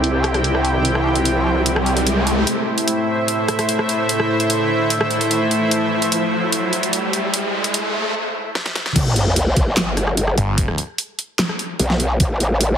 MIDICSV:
0, 0, Header, 1, 7, 480
1, 0, Start_track
1, 0, Tempo, 405405
1, 1005, Time_signature, 4, 2, 24, 8
1, 15130, End_track
2, 0, Start_track
2, 0, Title_t, "Supersaw synth"
2, 0, Program_c, 0, 81
2, 0, Note_on_c, 0, 48, 85
2, 0, Note_on_c, 0, 60, 76
2, 0, Note_on_c, 0, 64, 81
2, 0, Note_on_c, 0, 67, 79
2, 0, Note_on_c, 0, 79, 93
2, 2886, Note_off_c, 0, 64, 0
2, 2887, Note_off_c, 0, 48, 0
2, 2887, Note_off_c, 0, 60, 0
2, 2887, Note_off_c, 0, 67, 0
2, 2887, Note_off_c, 0, 79, 0
2, 2924, Note_on_c, 0, 45, 88
2, 2924, Note_on_c, 0, 57, 78
2, 2924, Note_on_c, 0, 64, 80
2, 2924, Note_on_c, 0, 76, 95
2, 2925, Note_on_c, 0, 72, 81
2, 10557, Note_off_c, 0, 45, 0
2, 10557, Note_off_c, 0, 57, 0
2, 10557, Note_off_c, 0, 64, 0
2, 10557, Note_off_c, 0, 72, 0
2, 10557, Note_off_c, 0, 76, 0
2, 15130, End_track
3, 0, Start_track
3, 0, Title_t, "Wobble bass"
3, 0, Program_c, 1, 39
3, 0, Note_on_c, 1, 36, 86
3, 2901, Note_off_c, 1, 36, 0
3, 10605, Note_on_c, 1, 33, 99
3, 11546, Note_off_c, 1, 33, 0
3, 11565, Note_on_c, 1, 31, 98
3, 12266, Note_off_c, 1, 31, 0
3, 13965, Note_on_c, 1, 35, 98
3, 14426, Note_off_c, 1, 35, 0
3, 14445, Note_on_c, 1, 33, 97
3, 15130, Note_off_c, 1, 33, 0
3, 15130, End_track
4, 0, Start_track
4, 0, Title_t, "Detuned saw bass"
4, 0, Program_c, 2, 39
4, 12285, Note_on_c, 2, 31, 99
4, 12746, Note_off_c, 2, 31, 0
4, 15130, End_track
5, 0, Start_track
5, 0, Title_t, "Riser"
5, 0, Program_c, 3, 103
5, 0, Note_on_c, 3, 60, 74
5, 2924, Note_off_c, 3, 60, 0
5, 2924, Note_on_c, 3, 60, 78
5, 9645, Note_off_c, 3, 60, 0
5, 15130, End_track
6, 0, Start_track
6, 0, Title_t, "Sub drop"
6, 0, Program_c, 4, 103
6, 10605, Note_on_c, 4, 60, 78
6, 12525, Note_off_c, 4, 60, 0
6, 15130, End_track
7, 0, Start_track
7, 0, Title_t, "Drums"
7, 44, Note_on_c, 9, 42, 80
7, 163, Note_off_c, 9, 42, 0
7, 284, Note_on_c, 9, 37, 62
7, 284, Note_on_c, 9, 42, 52
7, 403, Note_off_c, 9, 37, 0
7, 403, Note_off_c, 9, 42, 0
7, 407, Note_on_c, 9, 37, 61
7, 407, Note_on_c, 9, 42, 53
7, 524, Note_off_c, 9, 42, 0
7, 524, Note_on_c, 9, 42, 80
7, 525, Note_off_c, 9, 37, 0
7, 643, Note_off_c, 9, 42, 0
7, 648, Note_on_c, 9, 37, 52
7, 765, Note_on_c, 9, 42, 54
7, 766, Note_off_c, 9, 37, 0
7, 883, Note_off_c, 9, 42, 0
7, 1004, Note_on_c, 9, 42, 80
7, 1123, Note_off_c, 9, 42, 0
7, 1127, Note_on_c, 9, 37, 58
7, 1246, Note_off_c, 9, 37, 0
7, 1367, Note_on_c, 9, 42, 54
7, 1485, Note_off_c, 9, 42, 0
7, 1485, Note_on_c, 9, 42, 82
7, 1603, Note_off_c, 9, 42, 0
7, 1964, Note_on_c, 9, 42, 81
7, 2083, Note_off_c, 9, 42, 0
7, 2087, Note_on_c, 9, 37, 74
7, 2205, Note_off_c, 9, 37, 0
7, 2205, Note_on_c, 9, 42, 53
7, 2323, Note_off_c, 9, 42, 0
7, 2328, Note_on_c, 9, 42, 53
7, 2446, Note_off_c, 9, 42, 0
7, 2446, Note_on_c, 9, 42, 77
7, 2564, Note_off_c, 9, 42, 0
7, 2686, Note_on_c, 9, 42, 53
7, 2804, Note_off_c, 9, 42, 0
7, 2925, Note_on_c, 9, 42, 78
7, 3044, Note_off_c, 9, 42, 0
7, 3288, Note_on_c, 9, 42, 55
7, 3405, Note_off_c, 9, 42, 0
7, 3405, Note_on_c, 9, 42, 83
7, 3523, Note_off_c, 9, 42, 0
7, 3885, Note_on_c, 9, 42, 85
7, 4004, Note_off_c, 9, 42, 0
7, 4126, Note_on_c, 9, 37, 58
7, 4126, Note_on_c, 9, 42, 54
7, 4244, Note_off_c, 9, 37, 0
7, 4244, Note_off_c, 9, 42, 0
7, 4248, Note_on_c, 9, 37, 56
7, 4248, Note_on_c, 9, 42, 52
7, 4365, Note_off_c, 9, 42, 0
7, 4365, Note_on_c, 9, 42, 80
7, 4367, Note_off_c, 9, 37, 0
7, 4484, Note_off_c, 9, 42, 0
7, 4488, Note_on_c, 9, 37, 51
7, 4606, Note_off_c, 9, 37, 0
7, 4606, Note_on_c, 9, 42, 54
7, 4724, Note_off_c, 9, 42, 0
7, 4846, Note_on_c, 9, 42, 78
7, 4964, Note_off_c, 9, 42, 0
7, 4968, Note_on_c, 9, 37, 59
7, 5087, Note_off_c, 9, 37, 0
7, 5209, Note_on_c, 9, 42, 52
7, 5326, Note_off_c, 9, 42, 0
7, 5326, Note_on_c, 9, 42, 79
7, 5445, Note_off_c, 9, 42, 0
7, 5806, Note_on_c, 9, 42, 84
7, 5924, Note_off_c, 9, 42, 0
7, 5928, Note_on_c, 9, 37, 76
7, 6045, Note_on_c, 9, 42, 53
7, 6046, Note_off_c, 9, 37, 0
7, 6163, Note_off_c, 9, 42, 0
7, 6168, Note_on_c, 9, 42, 52
7, 6285, Note_off_c, 9, 42, 0
7, 6285, Note_on_c, 9, 42, 78
7, 6404, Note_off_c, 9, 42, 0
7, 6525, Note_on_c, 9, 42, 54
7, 6643, Note_off_c, 9, 42, 0
7, 6765, Note_on_c, 9, 42, 77
7, 6884, Note_off_c, 9, 42, 0
7, 7129, Note_on_c, 9, 42, 53
7, 7246, Note_off_c, 9, 42, 0
7, 7246, Note_on_c, 9, 42, 77
7, 7364, Note_off_c, 9, 42, 0
7, 7725, Note_on_c, 9, 42, 80
7, 7844, Note_off_c, 9, 42, 0
7, 7965, Note_on_c, 9, 42, 52
7, 8084, Note_off_c, 9, 42, 0
7, 8088, Note_on_c, 9, 42, 52
7, 8205, Note_off_c, 9, 42, 0
7, 8205, Note_on_c, 9, 42, 76
7, 8324, Note_off_c, 9, 42, 0
7, 8446, Note_on_c, 9, 42, 51
7, 8564, Note_off_c, 9, 42, 0
7, 8686, Note_on_c, 9, 42, 75
7, 8804, Note_off_c, 9, 42, 0
7, 9049, Note_on_c, 9, 42, 52
7, 9166, Note_off_c, 9, 42, 0
7, 9166, Note_on_c, 9, 42, 78
7, 9284, Note_off_c, 9, 42, 0
7, 10126, Note_on_c, 9, 38, 62
7, 10245, Note_off_c, 9, 38, 0
7, 10249, Note_on_c, 9, 38, 66
7, 10366, Note_off_c, 9, 38, 0
7, 10366, Note_on_c, 9, 38, 88
7, 10484, Note_off_c, 9, 38, 0
7, 10489, Note_on_c, 9, 38, 83
7, 10605, Note_on_c, 9, 36, 122
7, 10607, Note_off_c, 9, 38, 0
7, 10607, Note_on_c, 9, 42, 82
7, 10607, Note_on_c, 9, 49, 107
7, 10723, Note_off_c, 9, 36, 0
7, 10725, Note_off_c, 9, 42, 0
7, 10725, Note_off_c, 9, 49, 0
7, 10846, Note_on_c, 9, 42, 57
7, 10964, Note_off_c, 9, 42, 0
7, 11085, Note_on_c, 9, 42, 85
7, 11204, Note_off_c, 9, 42, 0
7, 11325, Note_on_c, 9, 36, 112
7, 11325, Note_on_c, 9, 42, 54
7, 11443, Note_off_c, 9, 36, 0
7, 11444, Note_off_c, 9, 42, 0
7, 11565, Note_on_c, 9, 38, 123
7, 11565, Note_on_c, 9, 39, 98
7, 11565, Note_on_c, 9, 42, 86
7, 11683, Note_off_c, 9, 38, 0
7, 11683, Note_off_c, 9, 39, 0
7, 11683, Note_off_c, 9, 42, 0
7, 11805, Note_on_c, 9, 37, 58
7, 11805, Note_on_c, 9, 42, 58
7, 11924, Note_off_c, 9, 37, 0
7, 11924, Note_off_c, 9, 42, 0
7, 11928, Note_on_c, 9, 37, 59
7, 12045, Note_on_c, 9, 42, 84
7, 12047, Note_off_c, 9, 37, 0
7, 12163, Note_off_c, 9, 42, 0
7, 12167, Note_on_c, 9, 37, 54
7, 12285, Note_on_c, 9, 42, 57
7, 12286, Note_off_c, 9, 37, 0
7, 12403, Note_off_c, 9, 42, 0
7, 12524, Note_on_c, 9, 42, 80
7, 12525, Note_on_c, 9, 36, 124
7, 12643, Note_off_c, 9, 36, 0
7, 12643, Note_off_c, 9, 42, 0
7, 12647, Note_on_c, 9, 37, 59
7, 12764, Note_on_c, 9, 42, 57
7, 12765, Note_off_c, 9, 37, 0
7, 12883, Note_off_c, 9, 42, 0
7, 13005, Note_on_c, 9, 42, 82
7, 13123, Note_off_c, 9, 42, 0
7, 13245, Note_on_c, 9, 42, 53
7, 13363, Note_off_c, 9, 42, 0
7, 13485, Note_on_c, 9, 38, 127
7, 13485, Note_on_c, 9, 39, 98
7, 13485, Note_on_c, 9, 42, 84
7, 13604, Note_off_c, 9, 38, 0
7, 13604, Note_off_c, 9, 39, 0
7, 13604, Note_off_c, 9, 42, 0
7, 13608, Note_on_c, 9, 37, 74
7, 13725, Note_on_c, 9, 42, 56
7, 13726, Note_off_c, 9, 37, 0
7, 13843, Note_off_c, 9, 42, 0
7, 13965, Note_on_c, 9, 42, 81
7, 14084, Note_off_c, 9, 42, 0
7, 14088, Note_on_c, 9, 38, 40
7, 14206, Note_on_c, 9, 42, 55
7, 14207, Note_off_c, 9, 38, 0
7, 14324, Note_off_c, 9, 42, 0
7, 14445, Note_on_c, 9, 36, 127
7, 14446, Note_on_c, 9, 42, 81
7, 14563, Note_off_c, 9, 36, 0
7, 14564, Note_off_c, 9, 42, 0
7, 14686, Note_on_c, 9, 42, 54
7, 14804, Note_off_c, 9, 42, 0
7, 14925, Note_on_c, 9, 42, 82
7, 15044, Note_off_c, 9, 42, 0
7, 15130, End_track
0, 0, End_of_file